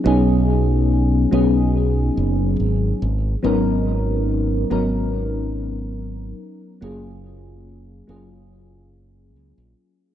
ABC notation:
X:1
M:4/4
L:1/16
Q:1/4=71
K:Blyd
V:1 name="FM electric piano"
[F,B,CDG]6 [F,B,CDG]8 z2 | [F,B,CDA]6 [F,B,CDA]2 z8 | [F,A,CEG]6 [F,A,CEG]8- [F,A,CEG]2 |]
V:2 name="Fingered electric bass" clef=bass
B,,,6 B,,,4 F,,,2 G,,,2 G,,,2 | G,,,6 G,,,8 z2 | F,,,6 F,,,6 C,, A,,, z2 |]